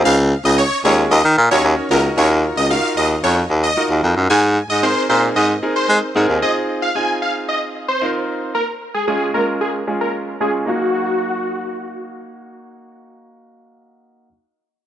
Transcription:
X:1
M:4/4
L:1/16
Q:1/4=113
K:Ebdor
V:1 name="Supersaw synth"
f z2 e d2 d z e z2 d z2 B z | d z2 e f2 e z d z2 e2 z3 | a z2 e c2 c z e z2 c2 z3 | e z2 f a2 f z e z2 c2 z3 |
B z2 A A2 B z A z2 B z2 A z | G12 z4 | z16 |]
V:2 name="Grand piano"
z6 [A,DFAd]2 z3 [DEGBd]3 [DEGBe]2 | [EFGB]3 z [EFGB]6- [EFGB] z [EFGB]4 | z4 [CEAB]2 [CEAB]3 z [CEAB]3 z [CEAB]2 | [CEFA]3 z [CEFA]6- [CEFA] z [CEFB]4 |
z4 [A,DFA]2 [A,DFB]3 z [A,DFA]3 z [A,DFA]2 | [B,EGf]16- | [B,EGf]16 |]
V:3 name="Baritone saxophone" clef=bass
D,,3 D,,2 z E,,2 E,, E, B,, E,, E,, z D,,2 | E,,3 D,,2 z E,,2 F,,2 E,,2 z E,, F,, G,, | A,,3 A,,2 z B,,2 A,,2 z2 A, z A,, E,, | z16 |
z16 | z16 | z16 |]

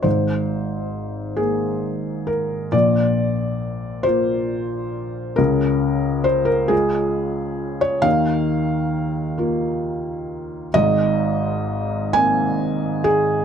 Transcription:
X:1
M:6/8
L:1/16
Q:3/8=45
K:Abmix
V:1 name="Felt piano"
c6 A4 B2 | =d6 c6 | B4 c B A4- A d | f12 |
e6 a4 A2 |]
V:2 name="Felt piano" clef=bass
[A,,,A,,]6 B,6 | [B,,,B,,]6 [B,F]6 | [D,,D,]6 [A,F]6 | [E,,E,]6 [B,F]6 |
[A,,,A,,]6 [B,C]6 |]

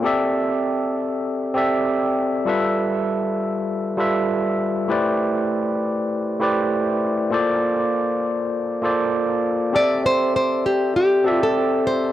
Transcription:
X:1
M:4/4
L:1/16
Q:"Swing 16ths" 1/4=99
K:C
V:1 name="Nylon-string guitar"
z16 | z16 | z16 | z16 |
d2 c2 c2 G2 G3 A3 c2 |]
V:2 name="Tine electric piano"
[CGAde]8- [CGAde]2 [CGAde]6 | [G,FABe]8- [G,FABe]2 [G,FABe]6 | [A,EGBcd]8- [A,EGBcd]2 [A,EGBcd]6 | [_B,FAcd]8- [B,FAcd]2 [B,FAcd]6 |
[CGAde]8- [CGAde]2 [CGAde]6 |]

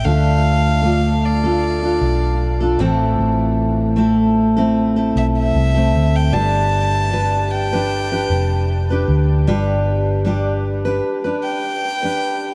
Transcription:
X:1
M:4/4
L:1/16
Q:"Swing 16ths" 1/4=76
K:Gmix
V:1 name="Violin"
f6 d8 z2 | z8 z2 e e4 g | a6 g8 z2 | z8 z2 g6 |]
V:2 name="Steel-string acoustic guitar"
[D,A,DFA]4 [A,DFA]3 [DFA]2 [DFA]4 [DFA] [A,,E,A,CEA]2- | [A,,E,A,CEA]4 [A,CEA]3 [A,CEA]2 [A,CEA]4 [A,CEA]3 | [G,DGB]4 [G,DGB]3 [DGB]2 [DGB]4 [DGB]3 | [G,DGB]4 [G,DGB]3 [DGB]2 [DGB]4 [DGB]3 |]
V:3 name="Fingered electric bass" clef=bass
D,,8- D,,2 B,,,4 A,,,2 | A,,,8- A,,,2 B,,,2 C,,2 D,,2 | G,,,8- G,,,2 F,,,4 D,,2 | G,,,8 z8 |]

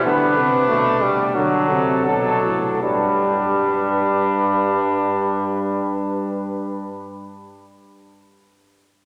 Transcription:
X:1
M:4/4
L:1/8
Q:1/4=77
K:G
V:1 name="Cornet"
B3 z A4 | B8- | B8 |]
V:2 name="Trumpet"
D4- D z D2 | D8- | D8 |]
V:3 name="Trombone" clef=bass
B, z A, G, F,2 F,2 | G,8- | G,8 |]
V:4 name="Bass trombone" clef=bass
D, C, B,, z D, C, B,, A,, | G,,8- | G,,8 |]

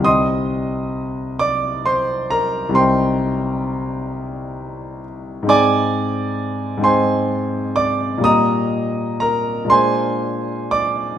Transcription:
X:1
M:12/8
L:1/8
Q:3/8=44
K:Cm
V:1 name="Grand piano"
[ec'e']3 [dd'] [cc'] [Bb] [cgc']4- [cgc'] z | [dad']3 [cac']2 [dd'] [ebe']2 [Bb] [cac']2 [dd'] |]
V:2 name="Grand piano"
[C,,G,CE]6 [C,,G,CE]6 | [A,,A,CE]3 [A,,A,CE]3 [B,,G,B,E]3 [B,,A,B,D]3 |]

